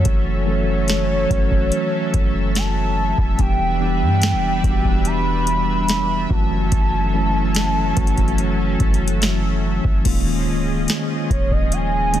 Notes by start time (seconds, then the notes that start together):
Already playing: E3 F#3 A3 C#4 F#4 A4 C#5 E5
0.05 F#1, kick, closed hi-hat
0.46 E3 F#3 A3 C#4 A4
0.88 snare, closed hi-hat
1.29 F#1 E3 F#3 A3 C#4 F#4, kick, closed hi-hat
1.51 kick
1.72 closed hi-hat
2.14 F#1, kick, closed hi-hat
2.55 A5, snare, closed hi-hat
3.18 E1, kick
3.38 E1 E3 G3 B3 D4 G4 B4 G5, kick, closed hi-hat
3.79 E3 G3 B3 D4 G4 G5
4.02 G2
4.22 snare, closed hi-hat
4.33 E1
4.62 E1 E3 G3 B3 D4 F#4, kick, closed hi-hat
4.71 G4
4.84 kick
5.05 B5, closed hi-hat
5.47 closed hi-hat
5.89 B5, snare, closed hi-hat
6.29 F#1 E3 F#3 A3 C#4 F#4 A4 A5, kick
6.72 F#1, kick, closed hi-hat
7.12 E3 F#3 A3 C#4 E4
7.55 snare, closed hi-hat
7.95 F#1 E3 F#3 A3 C#4 F#4, kick, closed hi-hat
8.07 closed hi-hat
8.17 kick, closed hi-hat
8.28 closed hi-hat
8.38 closed hi-hat
8.80 F#1, kick, closed hi-hat
8.94 closed hi-hat
9.08 closed hi-hat
9.22 snare, closed hi-hat
9.84 F#1, kick
10.04 D#1 D#3 F3 G#3 A#3 C#4 F4 G#4 D#5, kick, closed hi-hat, crash
10.48 C#1
10.88 snare, closed hi-hat
11.30 D#1 C#5, kick, closed hi-hat
11.51 D#5, kick
11.72 G#5, closed hi-hat
12.13 D#3 G#3 A#3 C#4 D#4, closed hi-hat